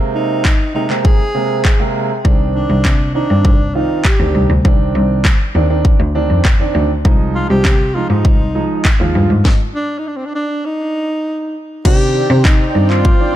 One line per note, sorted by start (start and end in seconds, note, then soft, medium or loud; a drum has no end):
0.00 0.42 C3 medium
0.00 0.42 G#3 medium
0.00 0.43 A#3 medium
0.00 0.43 C4 loud
0.15 0.71 D#4 medium
0.45 kick loud
0.45 clap loud
0.74 0.84 C3 medium
0.74 0.84 G#3 medium
0.74 0.84 A#3 medium
0.74 0.85 C4 medium
0.74 0.88 D#4 medium
0.90 1.19 C3 medium
0.90 1.19 G#3 medium
0.90 1.19 A#3 medium
0.90 1.19 C4 medium
0.90 clap medium
1.05 1.91 G#4 loud
1.05 kick loud
1.34 1.64 C3 medium
1.34 1.64 G#3 medium
1.34 1.64 A#3 medium
1.34 1.64 C4 medium
1.65 kick loud
1.65 clap loud
1.80 2.09 C3 medium
1.80 2.09 G#3 medium
1.80 2.09 A#3 medium
1.80 2.09 C4 medium
2.25 2.55 C2 loud
2.25 2.82 D#3 medium
2.25 2.83 C4 medium
2.25 2.83 D4 loud
2.25 kick loud
2.55 3.11 D4 medium
2.70 2.80 C2 medium
2.85 3.05 C3 loud
2.85 kick loud
2.85 clap loud
3.15 3.24 D#3 medium
3.15 3.24 C4 medium
3.15 3.76 D4 medium
3.15 3.25 D#4 medium
3.30 3.40 G2 medium
3.30 3.59 D#3 medium
3.30 3.59 C4 medium
3.30 3.59 D4 medium
3.45 3.65 C2 medium
3.45 kick loud
3.75 4.04 D#3 medium
3.75 4.04 C4 medium
3.75 4.06 D#4 medium
3.75 4.04 F4 medium
4.05 4.50 G4 medium
4.05 kick loud
4.05 clap loud
4.20 4.30 D2 medium
4.20 4.49 D#3 medium
4.20 4.49 C4 medium
4.20 4.49 D4 medium
4.35 4.45 C2 medium
4.50 4.60 D2 medium
4.65 4.85 C2 loud
4.65 5.22 D#3 medium
4.65 5.23 C4 medium
4.65 5.23 D4 loud
4.65 kick loud
4.95 5.15 C2 medium
5.25 kick loud
5.25 clap loud
5.55 5.75 D#2 medium
5.55 5.64 D#3 medium
5.55 5.65 C4 medium
5.55 5.65 D4 medium
5.69 5.99 D#3 medium
5.69 5.99 C4 medium
5.69 5.99 D4 loud
5.85 kick loud
6.00 6.10 D2 medium
6.15 6.44 D#3 medium
6.15 6.44 C4 medium
6.15 6.44 D4 loud
6.30 6.40 F2 medium
6.45 kick loud
6.45 clap loud
6.60 6.89 D#3 medium
6.60 6.89 C4 medium
6.60 6.89 D4 medium
6.75 6.95 D2 medium
7.05 7.35 C2 loud
7.05 7.62 F3 medium
7.05 7.63 G#3 medium
7.05 7.63 D#4 loud
7.05 kick loud
7.35 7.49 F4 loud
7.50 7.60 C2 medium
7.50 7.96 G4 loud
7.65 7.85 C3 loud
7.65 kick loud
7.65 clap loud
7.95 8.04 F3 medium
7.95 8.05 G#3 medium
7.95 8.05 D#4 medium
7.95 8.09 F4 loud
8.10 8.20 G#2 medium
8.10 8.39 F3 medium
8.10 8.39 G#3 medium
8.10 8.96 D#4 medium
8.10 8.39 D#4 medium
8.25 8.45 C2 medium
8.25 kick loud
8.55 8.84 F3 medium
8.55 8.84 G#3 medium
8.55 8.84 D#4 medium
8.85 kick loud
8.85 clap loud
9.00 9.10 D#2 medium
9.00 9.29 F3 medium
9.00 9.29 G#3 medium
9.00 9.29 F4 medium
9.15 9.25 G2 medium
9.30 9.40 G#2 medium
9.45 kick loud
9.45 snare medium
9.75 10.00 D4 loud
9.99 10.09 D#4 medium
10.08 10.18 D4 medium
10.17 10.27 C4 medium
10.26 10.35 D4 medium
10.35 10.67 D4 loud
10.65 11.55 D#4 loud
11.85 12.05 C3 loud
11.85 12.42 D#3 medium
11.85 12.43 C4 medium
11.85 13.36 C4 medium
11.85 12.43 D4 medium
11.85 12.46 G4 loud
11.85 13.36 C5 medium
11.85 13.36 D5 medium
11.85 13.36 G5 medium
11.85 kick loud
11.85 crash medium
12.30 12.50 C3 loud
12.45 12.92 D#4 medium
12.45 kick loud
12.45 clap loud
12.75 13.05 G2 medium
12.75 13.04 D#3 medium
12.75 13.04 C4 medium
12.75 13.04 D4 medium
12.90 13.36 F4 medium
12.90 clap medium
13.05 kick loud
13.20 13.36 D#3 medium
13.20 13.36 C4 medium
13.20 13.36 D4 medium